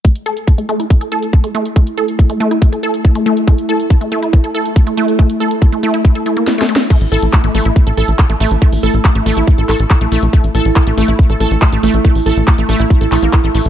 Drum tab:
CC |------------------------------------------------|------------------------------------------------|------------------------------------------------|------------------------------------------------|
HH |x--x--x--x--x--x--x--x--x--x--x--x--x--x--x--x--|x--x--x--x--x--x--x--x--x--x--x--x--x--x--x--x--|x--x--x--x--x--x--x--x--x--x--x--x--x--x--x--x--|x--x--x--x--x--x--x--x--x--x--x--x--x--x--x--x--|
CP |------------------------------------------------|------------------------------------------------|------------------------------------------------|------------------------------------------------|
SD |------------------------------------------------|------------------------------------------------|------------------------------------------------|------------------------------------o---o---o---|
BD |o-----------o-----------o-----------o-----------|o-----------o-----------o-----------o-----------|o-----------o-----------o-----------o-----------|o-----------o-----------o-----------------------|

CC |x-----------------------------------------------|------------------------------------------------|------------------------------------------------|------------------------------------------------|
HH |x--x--o--x--x--x--o--x--x--x--o--x--x--x--o--x--|x--o--o--x--x--x--o--x--x--x--o--x--x--x--o--x--|x--x--o--x--x--x--o--x--x--x--o--x--x--x--o--x--|x--o--o--x--x--x--o--x--x--x--o--x--x--x--o--x--|
CP |------------x-----------------------x-----------|------------x-----------------x-----x-----------|------------x-----------------------x-----------|------------x-----------------x-----x-----------|
SD |------------------------------------------------|------------------------------------------------|------------------------------------------------|------------------------------------------------|
BD |o-----------o-----------o-----------o-----------|o-----------o-----------o-----------o-----------|o-----------o-----------o-----------o-----------|o-----------o-----------o-----------o-----------|